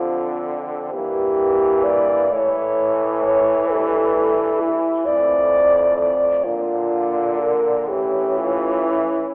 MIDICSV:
0, 0, Header, 1, 5, 480
1, 0, Start_track
1, 0, Tempo, 883652
1, 510, Tempo, 917431
1, 511, Time_signature, 6, 3, 24, 8
1, 3390, Tempo, 972447
1, 4350, Tempo, 1022147
1, 4799, End_track
2, 0, Start_track
2, 0, Title_t, "French horn"
2, 0, Program_c, 0, 60
2, 0, Note_on_c, 0, 65, 80
2, 356, Note_off_c, 0, 65, 0
2, 501, Note_on_c, 0, 67, 83
2, 982, Note_on_c, 0, 74, 87
2, 990, Note_off_c, 0, 67, 0
2, 1242, Note_on_c, 0, 73, 84
2, 1250, Note_off_c, 0, 74, 0
2, 1703, Note_off_c, 0, 73, 0
2, 1706, Note_on_c, 0, 73, 93
2, 1954, Note_on_c, 0, 69, 94
2, 1962, Note_off_c, 0, 73, 0
2, 2429, Note_on_c, 0, 64, 84
2, 2437, Note_off_c, 0, 69, 0
2, 2668, Note_on_c, 0, 74, 94
2, 2676, Note_off_c, 0, 64, 0
2, 3141, Note_off_c, 0, 74, 0
2, 3144, Note_on_c, 0, 74, 83
2, 3391, Note_on_c, 0, 65, 93
2, 3398, Note_off_c, 0, 74, 0
2, 3862, Note_on_c, 0, 70, 78
2, 3870, Note_off_c, 0, 65, 0
2, 4103, Note_on_c, 0, 67, 78
2, 4111, Note_off_c, 0, 70, 0
2, 4346, Note_on_c, 0, 65, 73
2, 4353, Note_off_c, 0, 67, 0
2, 4576, Note_on_c, 0, 64, 73
2, 4583, Note_off_c, 0, 65, 0
2, 4744, Note_off_c, 0, 64, 0
2, 4799, End_track
3, 0, Start_track
3, 0, Title_t, "French horn"
3, 0, Program_c, 1, 60
3, 0, Note_on_c, 1, 60, 46
3, 512, Note_on_c, 1, 58, 54
3, 520, Note_off_c, 1, 60, 0
3, 1227, Note_off_c, 1, 58, 0
3, 1230, Note_on_c, 1, 57, 56
3, 2506, Note_off_c, 1, 57, 0
3, 2672, Note_on_c, 1, 57, 57
3, 3371, Note_off_c, 1, 57, 0
3, 3395, Note_on_c, 1, 62, 56
3, 4094, Note_off_c, 1, 62, 0
3, 4102, Note_on_c, 1, 61, 57
3, 4799, Note_off_c, 1, 61, 0
3, 4799, End_track
4, 0, Start_track
4, 0, Title_t, "French horn"
4, 0, Program_c, 2, 60
4, 0, Note_on_c, 2, 50, 54
4, 494, Note_off_c, 2, 50, 0
4, 510, Note_on_c, 2, 52, 60
4, 1213, Note_off_c, 2, 52, 0
4, 1229, Note_on_c, 2, 52, 69
4, 3223, Note_off_c, 2, 52, 0
4, 3388, Note_on_c, 2, 50, 61
4, 4103, Note_on_c, 2, 52, 66
4, 4111, Note_off_c, 2, 50, 0
4, 4799, Note_off_c, 2, 52, 0
4, 4799, End_track
5, 0, Start_track
5, 0, Title_t, "French horn"
5, 0, Program_c, 3, 60
5, 0, Note_on_c, 3, 41, 53
5, 486, Note_off_c, 3, 41, 0
5, 499, Note_on_c, 3, 43, 55
5, 1224, Note_on_c, 3, 45, 65
5, 1232, Note_off_c, 3, 43, 0
5, 1950, Note_off_c, 3, 45, 0
5, 1953, Note_on_c, 3, 43, 58
5, 2514, Note_off_c, 3, 43, 0
5, 2666, Note_on_c, 3, 41, 65
5, 3389, Note_on_c, 3, 46, 59
5, 3396, Note_off_c, 3, 41, 0
5, 4100, Note_on_c, 3, 45, 61
5, 4107, Note_off_c, 3, 46, 0
5, 4799, Note_off_c, 3, 45, 0
5, 4799, End_track
0, 0, End_of_file